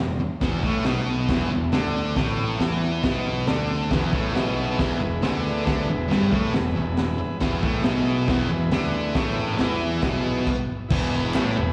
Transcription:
0.00 0.18 E1 medium
0.00 0.15 E2 medium
0.20 muted distorted electric guitar stroke medium
0.20 muted picked electric bass stroke soft
0.41 0.62 E1 medium
0.41 0.63 E2 medium
0.41 0.63 E3 loud
0.41 kick loud
0.41 snare loud
0.41 open hi-hat medium
0.63 0.83 A1 loud
0.63 0.85 A2 medium
0.63 0.85 A3 loud
0.63 kick medium
0.84 1.26 B1 medium
0.84 1.28 B2 medium
0.84 1.29 B3 loud
0.84 snare loud
0.84 open hi-hat medium
1.29 1.49 E1 medium
1.29 1.50 E2 medium
1.29 1.50 E3 medium
1.29 kick loud
1.29 snare loud
1.29 open hi-hat medium
1.51 1.71 E1 medium
1.51 1.68 E2 medium
1.72 2.13 D2 medium
1.72 2.16 D3 medium
1.72 2.16 D4 loud
1.72 snare loud
1.72 open hi-hat medium
2.16 2.57 A1 medium
2.16 2.59 A2 medium
2.16 2.59 A3 loud
2.16 kick loud
2.16 snare loud
2.16 open hi-hat soft
2.59 3.01 E2 medium
2.59 3.03 E3 medium
2.59 3.03 E4 loud
2.59 snare loud
2.59 open hi-hat soft
3.03 3.44 B1 medium
3.03 3.47 B2 medium
3.03 3.47 B3 loud
3.03 kick loud
3.03 snare loud
3.03 open hi-hat medium
3.47 3.88 D2 medium
3.47 3.91 D3 medium
3.47 3.91 D4 medium
3.47 snare loud
3.47 open hi-hat medium
3.90 4.12 E1 medium
3.90 4.12 E2 medium
3.90 4.12 E3 loud
3.90 7.37 E4 medium
3.90 7.37 G#4 medium
3.90 7.38 B4 medium
3.90 kick loud
3.90 snare loud
3.90 open hi-hat medium
4.13 4.33 A1 medium
4.13 4.34 A2 medium
4.13 4.35 A3 medium
4.13 kick loud
4.34 4.75 B1 medium
4.34 4.78 B2 medium
4.34 4.78 B3 medium
4.34 snare loud
4.34 open hi-hat medium
4.78 4.99 E1 medium
4.78 4.98 E2 medium
4.78 5.00 E3 medium
4.78 kick loud
4.78 snare loud
4.78 open hi-hat medium
5.00 5.21 E1 medium
5.00 5.18 E2 medium
5.22 5.63 D2 medium
5.22 5.64 D3 medium
5.22 5.65 D4 medium
5.22 snare loud
5.22 open hi-hat medium
5.65 5.87 D2 medium
5.65 5.87 D3 loud
5.65 5.88 D4 loud
5.65 kick loud
5.65 snare loud
5.65 open hi-hat medium
5.88 6.08 E1 medium
5.88 6.05 E2 medium
6.08 6.30 G1 medium
6.08 6.30 G2 medium
6.08 6.31 G3 loud
6.08 snare loud
6.08 open hi-hat soft
6.31 6.52 A1 medium
6.31 6.52 A2 medium
6.31 6.53 A3 loud
6.31 kick loud
6.53 6.74 E1 medium
6.53 6.71 E2 medium
6.53 snare loud
6.53 open hi-hat soft
6.75 6.96 E1 medium
6.75 6.93 E2 medium
6.97 7.18 E1 medium
6.97 7.15 E2 medium
6.97 snare loud
6.97 open hi-hat medium
7.18 muted distorted electric guitar stroke medium
7.18 muted picked electric bass stroke soft
7.39 7.61 E1 medium
7.39 7.62 E2 medium
7.39 7.62 E3 loud
7.39 10.42 E4 medium
7.39 10.43 G#4 medium
7.39 10.43 B4 medium
7.39 kick loud
7.39 snare loud
7.39 open hi-hat medium
7.62 7.83 A1 medium
7.62 7.83 A2 medium
7.62 7.84 A3 loud
7.62 kick loud
7.84 8.25 B1 medium
7.84 8.27 B2 medium
7.84 8.28 B3 loud
7.84 snare loud
7.84 open hi-hat medium
8.28 8.48 E1 medium
8.28 8.49 E2 loud
8.28 8.50 E3 loud
8.28 kick loud
8.28 snare loud
8.28 open hi-hat medium
8.50 8.70 E1 medium
8.50 8.67 E2 medium
8.71 9.12 D2 medium
8.71 9.15 D3 medium
8.71 9.15 D4 medium
8.71 snare loud
8.71 open hi-hat medium
9.15 9.56 A1 medium
9.15 9.60 A2 medium
9.15 9.60 A3 loud
9.15 kick loud
9.15 snare loud
9.15 open hi-hat medium
9.58 9.99 E2 medium
9.58 10.03 E3 medium
9.58 10.03 E4 loud
9.58 snare loud
9.58 open hi-hat soft
10.02 10.43 B1 medium
10.02 10.46 B2 medium
10.02 10.47 B3 loud
10.02 kick loud
10.02 snare loud
10.02 open hi-hat medium
10.47 kick loud
10.47 crash medium
10.88 11.31 E1 loud
10.88 11.33 E2 medium
10.88 11.34 E3 loud
10.88 11.73 E4 medium
10.88 11.73 B4 medium
10.88 11.73 G#5 medium
10.88 kick loud
10.88 crash loud
10.88 crash medium
11.34 11.54 A1 medium
11.34 11.56 A2 medium
11.34 11.56 A3 loud
11.34 snare loud
11.34 clap loud
11.34 crash medium
11.57 11.73 E1 medium
11.57 11.73 E2 medium

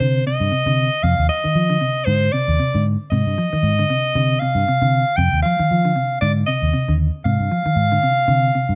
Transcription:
0.00 0.21 C3 medium
0.00 0.22 D3 medium
0.00 0.24 C5 medium
0.27 0.48 C3 medium
0.27 1.05 D#5 loud
0.40 0.50 G2 medium
0.52 0.64 C3 medium
0.66 0.87 C3 medium
0.66 0.88 D3 medium
1.03 1.15 F2 loud
1.03 1.25 C3 medium
1.03 1.29 F5 loud
1.19 1.28 D#2 medium
1.29 2.07 D#5 loud
1.29 muted clean electric guitar stroke medium
1.44 1.66 D#3 medium
1.44 muted fingered electric bass stroke soft
1.55 1.76 F3 medium
1.70 1.79 D3 medium
1.81 2.03 C3 medium
2.05 2.28 G#2 loud
2.05 2.29 D3 medium
2.05 2.34 C5 medium
2.32 2.55 C3 medium
2.32 2.85 D5 medium
2.48 2.57 D#2 medium
2.59 2.71 C3 medium
2.74 2.95 G#2 medium
2.74 2.96 D3 medium
3.11 3.23 G#2 loud
3.11 3.33 C3 medium
3.11 4.41 D#5 loud
3.26 3.35 G2 medium
3.38 3.50 F3 medium
3.53 3.74 D#3 medium
3.53 muted fingered electric bass stroke soft
3.63 3.84 G#2 medium
3.79 3.88 D3 medium
3.90 4.11 C3 medium
4.15 4.36 C3 loud
4.15 4.37 D3 medium
4.39 4.63 C3 medium
4.39 5.18 F5 loud
4.55 4.64 G2 medium
4.68 4.79 C3 medium
4.82 5.02 C3 medium
4.82 5.03 D3 medium
5.17 5.29 F2 loud
5.17 5.40 C3 medium
5.17 5.42 G5 loud
5.33 5.42 D#2 medium
5.42 5.57 F3 medium
5.42 6.17 F5 loud
5.59 5.80 D#3 medium
5.59 muted fingered electric bass stroke soft
5.71 5.91 F3 medium
5.85 5.94 D3 medium
5.96 6.17 C3 medium
6.21 6.43 G#2 loud
6.21 6.43 D3 medium
6.21 6.33 D5 medium
6.46 6.69 C3 medium
6.46 6.95 D#5 medium
6.62 6.71 D#2 medium
6.73 6.85 C3 medium
6.88 7.09 D#2 medium
6.88 7.09 D3 medium
7.25 7.37 G#2 loud
7.25 7.46 C3 medium
7.25 8.75 F5 loud
7.40 7.49 G2 medium
7.51 7.63 F3 medium
7.65 7.87 D#3 medium
7.65 muted fingered electric bass stroke soft
7.76 7.97 G#2 medium
7.92 8.01 D3 medium
8.03 8.24 C3 medium
8.28 8.49 C3 medium
8.28 8.49 D3 medium
8.55 8.75 C3 medium
8.69 8.75 G2 medium

